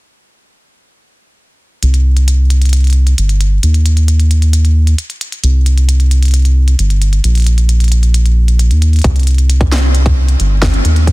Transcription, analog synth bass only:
1.83 3.14 C2 loud
3.18 3.59 G1 medium
3.63 4.94 D#2 loud
5.43 6.75 C2 loud
6.79 7.20 G1 medium
7.24 8.72 A#1 loud
8.71 9.00 D#2 medium
9.04 10.36 C2 loud
10.40 10.81 G1 medium
10.85 11.12 D#2 loud

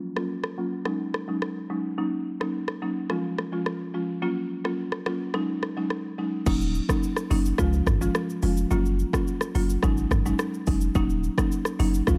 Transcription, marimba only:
0.16 0.34 F#3 medium
0.16 0.34 A#3 medium
0.16 0.35 C#4 medium
0.16 0.35 F4 medium
0.57 0.77 F#3 medium
0.57 0.77 A#3 medium
0.57 0.77 C#4 medium
0.57 0.77 F4 medium
0.85 1.25 F#3 medium
0.85 1.25 G#3 medium
0.85 1.25 C#4 medium
0.85 1.25 D#4 medium
1.28 1.67 F#3 medium
1.28 1.67 G#3 medium
1.28 1.67 C#4 medium
1.28 1.67 D#4 medium
1.70 1.96 F#3 medium
1.70 1.96 G#3 medium
1.70 1.96 C#4 medium
1.70 1.96 D#4 medium
1.98 2.17 F#3 medium
1.98 2.17 A#3 medium
1.98 2.17 C#4 medium
1.98 2.17 D#4 loud
2.40 2.59 F#3 medium
2.40 2.59 A#3 medium
2.40 2.59 C#4 medium
2.40 2.59 D#4 medium
2.82 3.01 F#3 medium
2.82 3.01 A#3 medium
2.82 3.01 C#4 medium
2.82 3.01 D#4 medium
3.10 3.49 F3 medium
3.10 3.49 G#3 medium
3.10 3.49 C#4 medium
3.10 3.49 F4 medium
3.52 3.91 F3 medium
3.52 3.91 G#3 medium
3.52 3.91 C#4 medium
3.52 3.91 F4 medium
3.94 4.20 F3 medium
3.94 4.20 G#3 medium
3.94 4.20 C#4 medium
3.94 4.20 F4 medium
4.22 4.41 F#3 medium
4.22 4.41 A#3 medium
4.22 4.41 C#4 medium
4.22 4.41 F4 loud
4.65 4.83 F#3 medium
4.65 4.83 A#3 medium
4.65 4.83 C#4 medium
4.65 4.83 F4 medium
5.06 5.25 F#3 medium
5.06 5.25 A#3 medium
5.06 5.25 C#4 medium
5.06 5.25 F4 medium
5.34 5.73 F#3 medium
5.34 5.74 G#3 medium
5.34 5.74 C#4 medium
5.34 5.74 D#4 loud
5.77 6.15 F#3 medium
5.77 6.15 G#3 medium
5.77 6.15 C#4 medium
5.77 6.15 D#4 medium
6.18 6.44 F#3 medium
6.18 6.44 G#3 medium
6.18 6.44 C#4 medium
6.18 6.45 D#4 medium
6.46 6.65 F#3 loud
6.46 6.65 A#3 medium
6.46 6.66 C#4 medium
6.46 6.66 D#4 loud
6.89 7.07 F#3 medium
6.89 7.07 A#3 medium
6.89 7.07 C#4 medium
6.89 7.08 D#4 medium
7.30 7.50 F#3 medium
7.30 7.50 A#3 medium
7.30 7.50 C#4 medium
7.30 7.50 D#4 medium
7.58 7.98 F3 medium
7.58 7.98 G#3 medium
7.58 7.98 C#4 medium
7.58 7.98 F4 loud
8.01 8.39 F3 medium
8.01 8.40 G#3 medium
8.01 8.40 C#4 medium
8.01 8.40 F4 medium
8.43 8.69 F3 medium
8.43 8.69 G#3 medium
8.43 8.69 C#4 medium
8.43 8.69 F4 medium
8.71 8.90 F#3 medium
8.71 8.90 A#3 medium
8.71 8.90 C#4 medium
8.71 8.90 F4 loud
9.13 9.32 F#3 medium
9.13 9.32 A#3 medium
9.13 9.32 C#4 medium
9.13 9.32 F4 medium
9.55 9.74 F#3 medium
9.55 9.74 A#3 medium
9.55 9.74 C#4 medium
9.55 9.74 F4 medium
9.83 10.22 F#3 medium
9.83 10.22 G#3 medium
9.83 10.22 C#4 medium
9.83 10.22 D#4 loud
10.25 10.64 F#3 medium
10.25 10.64 G#3 medium
10.25 10.64 C#4 medium
10.25 10.64 D#4 medium
10.67 10.93 F#3 medium
10.67 10.93 G#3 medium
10.67 10.93 C#4 medium
10.67 10.93 D#4 medium
10.95 11.14 F#3 loud
10.95 11.14 A#3 medium
10.95 11.14 C#4 medium
10.95 11.14 D#4 loud
11.38 11.56 F#3 medium
11.38 11.56 A#3 medium
11.38 11.56 C#4 medium
11.38 11.56 D#4 medium
11.79 11.98 F#3 medium
11.79 11.98 A#3 medium
11.79 11.98 C#4 medium
11.79 11.99 D#4 medium
12.07 12.18 F3 medium
12.07 12.18 G#3 medium
12.07 12.18 C#4 medium
12.07 12.18 F4 loud

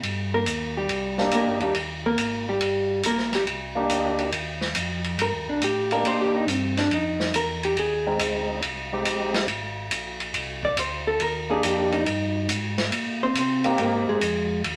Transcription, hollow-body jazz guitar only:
0.34 0.74 A#3 medium
0.34 0.73 A#4 medium
0.77 1.30 G3 soft
0.77 1.29 G4 medium
1.35 1.62 A#3 medium
1.35 1.62 A#4 medium
1.62 1.76 G3 soft
1.62 1.75 G4 soft
2.06 2.45 A#3 medium
2.06 2.45 A#4 medium
2.49 3.01 G3 soft
2.49 3.01 G4 medium
3.06 3.34 A#3 medium
3.06 3.33 A#4 medium
3.35 3.43 G3 medium
3.35 3.43 G4 medium
5.22 5.49 A#4 medium
5.49 5.62 D4 soft
5.64 5.91 G4 medium
5.92 6.05 A#4 medium
6.07 6.20 C5 medium
6.22 6.34 G4 medium
6.36 6.50 D#4 medium
6.50 6.77 C4 medium
6.78 6.91 D4 medium
6.94 7.32 D#4 medium
7.36 7.63 A#4 medium
7.65 7.77 G4 medium
7.79 8.46 G#4 medium
10.65 10.78 D5 medium
10.79 11.07 C5 medium
11.07 11.20 A4 medium
11.22 11.50 A#4 medium
11.51 11.64 G#4 medium
11.65 11.93 G4 medium
11.94 12.46 D#4 medium
13.23 13.36 C4 medium
13.23 13.36 C5 medium
13.39 13.78 C4 medium
13.39 13.77 C5 medium
13.82 14.08 A#3 medium
13.82 14.08 A#4 medium
14.09 14.61 G#3 medium
14.09 14.61 G#4 medium

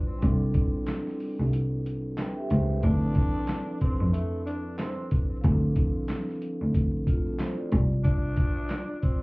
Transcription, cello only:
0.23 0.49 C2 loud
1.39 2.14 C2 medium
2.51 2.77 C#2 loud
2.83 3.10 D2 loud
4.00 4.94 F2 medium
5.44 5.71 D2 loud
6.61 7.36 D2 medium
7.72 8.26 C2 loud

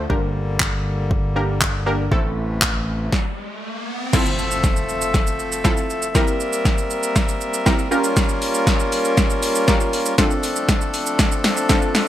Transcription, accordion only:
0.10 2.10 D3 medium
0.10 2.10 G3 medium
0.10 2.10 A#3 medium
2.11 3.11 C3 medium
2.11 3.11 E3 medium
2.11 3.11 A3 medium
4.13 6.13 F3 medium
4.13 6.13 A3 medium
4.13 6.13 C4 medium
4.13 6.13 A4 medium
4.13 7.88 E5 medium
6.15 10.14 G3 medium
6.15 7.90 A#3 medium
6.15 7.90 C4 medium
6.15 7.90 A#4 medium
7.91 10.16 A#3 medium
7.91 10.16 C#4 medium
7.91 10.16 F4 medium
7.91 10.16 A#4 medium
10.18 12.08 F3 medium
10.18 12.08 A3 medium
10.18 12.08 C4 medium
10.18 12.08 D4 medium
10.18 12.08 A4 medium

